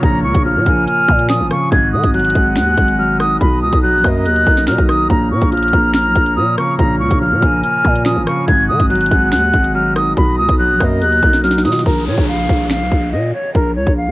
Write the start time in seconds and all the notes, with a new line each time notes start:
Already playing: A#2 C#3 F3 A#3 C#5 A#5 F6, downlifter
0.03 A#1 A#2 A#5, kick, closed hi-hat
0.24 C#2 C#6
0.35 A#1, kick, closed hi-hat
0.45 F3 F6
0.56 A#2
0.66 A#1 A#3 G#5, kick, closed hi-hat
0.88 F6, closed hi-hat
1.09 A#2 A#3, kick
1.19 closed hi-hat
1.29 F3 D#6, finger snap, snare, closed hi-hat
1.40 G#1
1.51 C#3 C#6, cross-stick, closed hi-hat
1.72 G#1 G#2 D#5 G#5 F#6 G#6, kick, closed hi-hat
1.93 D#3 D#6
2.04 G#1, kick, closed hi-hat
2.14 F#3 F#6, closed hi-hat
2.19 closed hi-hat
2.25 closed hi-hat
2.30 closed hi-hat
2.35 G#1 G#3 F#5, kick, closed hi-hat
2.56 D#2 F#6, finger snap, snare
2.78 G#1 G#3, kick, closed hi-hat
2.88 closed hi-hat
2.99 F#3 F6
3.20 D#3 D#6, cross-stick, closed hi-hat
3.40 B1 B2 A#5 B5 D#6, kick, closed hi-hat
3.62 C#2 D#6
3.73 B1, kick, closed hi-hat
3.83 F#3 F#6
3.94 A#1
4.04 F#2 A#3 D#5, kick, cross-stick, closed hi-hat
4.25 D#2 F#6, closed hi-hat
4.36 closed hi-hat
4.46 B1 A#3, kick
4.57 snare, closed hi-hat
4.67 B2 F#3 F6, finger snap, snare, closed hi-hat
4.78 B1, kick
4.89 D#3 D#6, cross-stick, closed hi-hat
5.10 A#1 A#2 C#5 A#5 F6, kick, closed hi-hat
5.31 A#2 C#6
5.42 A#1, kick, closed hi-hat
5.52 F3 F6, closed hi-hat
5.57 closed hi-hat
5.63 closed hi-hat
5.68 closed hi-hat
5.73 A#1 A#3 A#5, kick, closed hi-hat
5.94 F6, finger snap, snare
6.05 B1
6.15 A#1 A#3, kick, closed hi-hat
6.26 closed hi-hat
6.37 A#2 F3 D#6
6.58 C#3 C#6, cross-stick, closed hi-hat
6.79 A#1 A#2 A#5, kick, closed hi-hat
7.00 C#2 C#6
7.11 A#1, kick, closed hi-hat
7.21 F3 F6
7.32 A#2
7.42 A#1 A#3 G#5, kick, closed hi-hat
7.63 F6, closed hi-hat
7.84 A#2 A#3, kick
7.95 closed hi-hat
8.05 F3 D#6, finger snap, snare, closed hi-hat
8.16 G#1
8.26 C#3 C#6, cross-stick, closed hi-hat
8.48 G#1 G#2 D#5 G#5 F#6 G#6, kick, closed hi-hat
8.69 D#3 D#6
8.80 G#1, kick, closed hi-hat
8.90 F#3 F#6, closed hi-hat
8.96 closed hi-hat
9.01 closed hi-hat
9.06 closed hi-hat
9.11 G#1 G#3 F#5, kick, closed hi-hat
9.32 D#2 F#6, finger snap, snare
9.54 G#1 G#3, kick, closed hi-hat
9.64 closed hi-hat
9.75 F#3 F6
9.96 D#3 D#6, cross-stick, closed hi-hat
10.17 B1 B2 A#5 B5 D#6, kick, closed hi-hat
10.38 C#2 D#6
10.49 B1, kick, closed hi-hat
10.59 F#3 F#6
10.70 A#1
10.80 F#2 A#3 D#5, kick, cross-stick, closed hi-hat
11.02 D#2 F#6, closed hi-hat
11.12 closed hi-hat
11.23 B1 A#3, kick
11.33 snare, closed hi-hat
11.44 F#3 F6, snare, closed hi-hat
11.51 snare
11.58 snare
11.65 B2 D#3 D#6, snare, closed hi-hat
11.72 snare
11.79 snare
11.86 A#1 A#4, kick, downlifter
12.07 A#2 C#5
12.18 A#1, kick
12.28 F5
12.49 A#1, kick
12.70 F5, finger snap, snare
12.81 B1
12.92 A#1, kick
13.12 A#2 D#5
13.34 C#5
13.55 A#1 A#4, kick
13.76 C#2 C#5
13.87 A#1, kick
13.97 F5
14.08 A#2